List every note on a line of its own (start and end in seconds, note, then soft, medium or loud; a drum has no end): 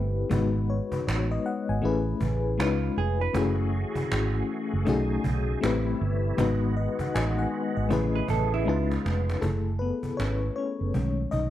0.00 0.23 G1 medium
0.00 0.22 A3 medium
0.00 0.23 C4 medium
0.00 0.23 E4 medium
0.00 0.24 G4 medium
0.00 0.24 B4 medium
0.30 0.79 G#1 loud
0.30 1.64 G#3 medium
0.30 1.65 B3 medium
0.30 1.66 D#4 medium
0.30 1.66 F#4 medium
0.30 cajon bass loud
0.34 0.70 B4 medium
0.69 0.92 C#5 medium
0.69 cajon slap soft
0.92 1.06 B4 medium
0.92 muted fingered electric bass stroke soft
0.92 cajon bass medium
1.07 1.37 A1 medium
1.07 1.29 C#5 medium
1.07 cajon slap loud
1.07 cajon slap medium
1.31 1.44 D#5 medium
1.46 1.68 F#5 medium
1.46 cajon slap soft
1.69 1.80 G#1 medium
1.69 2.05 G#5 medium
1.82 2.13 A1 loud
1.82 2.58 A3 medium
1.82 2.58 C#4 medium
1.82 2.59 E4 medium
1.82 2.60 G#4 medium
1.82 2.60 B4 medium
1.82 cajon slap soft
2.21 2.59 A1 medium
2.21 cajon bass medium
2.58 2.89 C#2 medium
2.58 3.26 G#3 medium
2.58 3.26 C#4 medium
2.58 3.27 D#4 medium
2.58 2.68 E4 medium
2.58 2.95 F4 medium
2.58 3.28 B4 medium
2.58 cajon slap loud
2.58 cajon slap medium
2.67 3.31 F4 medium
2.96 3.27 F1 medium
2.96 3.20 G#4 medium
2.96 cajon slap soft
3.21 3.57 B4 medium
3.33 3.83 F#1 loud
3.33 4.85 E3 medium
3.33 4.68 A3 medium
3.33 6.35 A3 medium
3.33 4.69 C#4 medium
3.33 4.69 E4 medium
3.33 4.85 F#4 medium
3.33 4.70 F#4 medium
3.33 5.60 G#4 medium
3.33 4.70 G#4 medium
3.33 cajon bass loud
3.72 cajon slap soft
3.95 muted fingered electric bass stroke soft
3.95 cajon bass medium
4.12 4.41 G#1 medium
4.12 cajon slap loud
4.49 cajon slap soft
4.73 4.84 F#1 medium
4.85 5.16 B1 loud
4.85 5.61 C#3 medium
4.85 5.60 A3 medium
4.85 5.62 C#4 medium
4.85 5.61 D#4 medium
4.85 5.63 D#4 medium
4.85 5.63 F#4 medium
4.85 5.64 G#4 medium
4.85 cajon bass medium
5.24 5.54 B1 medium
5.24 cajon bass medium
5.61 5.93 A1 medium
5.61 6.37 C3 medium
5.61 6.37 G3 medium
5.61 6.29 A3 medium
5.61 6.30 C4 medium
5.61 6.37 E4 medium
5.61 6.30 E4 medium
5.61 6.31 G4 medium
5.61 cajon slap loud
5.61 cajon slap medium
5.65 6.31 B4 medium
6.00 6.31 G1 loud
6.00 cajon slap soft
6.37 6.87 G#1 loud
6.37 7.88 D#3 medium
6.37 7.72 G#3 medium
6.37 7.89 G#3 medium
6.37 9.39 B3 medium
6.37 7.73 B3 medium
6.37 7.73 D#4 medium
6.37 7.88 F#4 medium
6.37 7.74 F#4 medium
6.37 7.74 B4 medium
6.37 cajon bass loud
6.76 6.99 D#5 medium
6.76 cajon slap soft
6.99 7.14 F#5 medium
6.99 muted fingered electric bass stroke soft
6.99 cajon bass medium
7.15 7.45 A1 medium
7.15 7.37 G#5 medium
7.15 cajon slap loud
7.39 7.74 F#5 medium
7.53 cajon slap soft
7.77 7.88 G#1 medium
7.77 8.12 D#5 medium
7.89 8.20 A1 loud
7.89 8.65 C#3 medium
7.89 8.65 A3 medium
7.89 8.65 C#4 medium
7.89 8.66 E4 medium
7.89 8.65 G#4 medium
7.89 8.67 G#4 medium
7.89 cajon bass medium
7.93 8.67 B4 medium
8.16 8.28 B4 medium
8.28 8.67 A1 medium
8.28 8.51 A4 medium
8.28 cajon bass medium
8.54 8.89 E4 medium
8.65 8.97 C#2 loud
8.65 9.41 C#3 medium
8.65 9.33 G#3 medium
8.65 9.41 G#3 medium
8.65 9.34 C#4 medium
8.65 9.34 D#4 medium
8.65 9.41 F4 medium
8.65 9.35 F4 medium
8.65 9.35 B4 medium
8.65 cajon slap medium
8.91 cajon slap medium
9.06 9.35 F1 loud
9.06 cajon slap medium
9.29 cajon slap medium
9.41 9.90 F#1 medium
9.41 9.78 A3 medium
9.41 10.53 E4 soft
9.41 10.52 G#4 soft
9.41 9.81 A4 medium
9.41 cajon bass loud
9.79 10.16 B3 medium
9.79 10.15 B4 medium
9.79 cajon slap soft
10.03 muted fingered electric bass stroke soft
10.03 cajon bass medium
10.17 10.48 G#1 medium
10.17 10.54 C#4 medium
10.17 10.55 C#5 medium
10.17 cajon slap loud
10.17 cajon slap medium
10.56 10.94 C#4 medium
10.56 11.34 C#5 medium
10.56 cajon slap soft
10.81 10.91 F#1 medium
10.94 11.24 B1 medium
10.94 11.48 D#3 soft
10.94 11.48 G#3 soft
10.94 11.49 A3 soft
10.94 11.49 C#4 medium
10.94 cajon bass medium
11.31 11.50 B1 medium
11.31 11.50 D#4 medium
11.31 11.50 D#5 medium
11.31 cajon bass medium